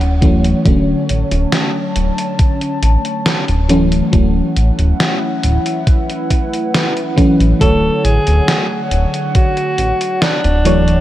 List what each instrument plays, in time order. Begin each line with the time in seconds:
Already playing: analog synth bass D1, fm electric piano E3 F#3 A3 C#4, ambient pad E4 C#5 F#5
0.01 closed hi-hat
0.21 fm electric piano E3 F#3 A3 C#4, kick, closed hi-hat
0.44 closed hi-hat
0.64 analog synth bass D1, fm electric piano D3 F#3 A3 C#4, ambient pad D3 A5, kick, closed hi-hat
1.09 analog synth bass A1, closed hi-hat
1.31 analog synth bass D1, closed hi-hat
1.52 snare, closed hi-hat
1.96 analog synth bass D1, closed hi-hat
2.18 closed hi-hat
2.39 kick, closed hi-hat
2.61 closed hi-hat
2.83 analog synth bass A1, closed hi-hat
3.05 closed hi-hat
3.26 snare, closed hi-hat
3.48 analog synth bass D1, closed hi-hat
3.69 fm electric piano E3 F#3 A3 C#4, ambient pad E4 F#5, closed hi-hat
3.92 closed hi-hat
4.12 analog synth bass D1, fm electric piano E3 F#3 A3 C#4, kick, closed hi-hat
4.56 analog synth bass A1, closed hi-hat
4.79 analog synth bass D1, closed hi-hat
5.00 snare, closed hi-hat
5.43 analog synth bass D1, ambient pad B4, closed hi-hat
5.66 closed hi-hat
5.87 kick, closed hi-hat
6.10 closed hi-hat
6.31 kick, closed hi-hat
6.54 closed hi-hat
6.75 snare, closed hi-hat
6.97 closed hi-hat
7.16 fm electric piano E3 F#3 A3 C#4, kick, closed hi-hat
7.40 analog synth bass A1, closed hi-hat
7.59 analog synth bass D1, fm electric piano D3 F#3 A3 C#5, ambient pad D3 C#5 F#5, alto saxophone A4, kick, closed hi-hat
8.05 analog synth bass A1, alto saxophone G#4, closed hi-hat
8.27 analog synth bass D1, closed hi-hat
8.48 snare, closed hi-hat
8.91 analog synth bass D1, closed hi-hat
9.14 closed hi-hat
9.35 alto saxophone F#4, kick, closed hi-hat
9.57 closed hi-hat
9.78 analog synth bass A1, closed hi-hat
10.01 closed hi-hat
10.22 alto saxophone D4, snare, closed hi-hat
10.44 analog synth bass D1, closed hi-hat
10.65 fm electric piano E3 F#3 A3 C#5, ambient pad E4 C#5 F#5, closed hi-hat
10.88 closed hi-hat